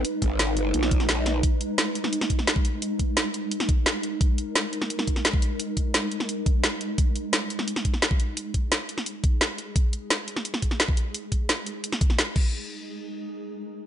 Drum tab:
CC |----------------|----------------|----------------|----------------|
HH |x-x-x-x-x-x-x-x-|x-x-x-x-x-x-x-x-|x-x-x-x-x-x-x-x-|x-x-x-x-x-x-x-x-|
SD |----o----o-oo-o-|----o--o-o-oo---|----o----o--o---|----o--o-o-oo---|
BD |--o-------o-----|o---------o--o--|--o-------o-----|o---------o--o--|

CC |----------------|----------------|----------------|----------------|
HH |x-x-x-x-x-x-x-x-|x-x-x-x-x-x-x-x-|x-x-x-x-x-x-x-x-|x-x-x-x-x-x-x-x-|
SD |----o--o----o---|----o--o-o-oo---|----o--o----o---|----o--o-o-oo---|
BD |--o-------o-----|o---------o--o--|--o-------o-----|o---------o--o--|

CC |--------------x-|----------------|
HH |x-x-x-x-x-x-x---|----------------|
SD |----o----o-oo---|----------------|
BD |--o-------o---o-|----------------|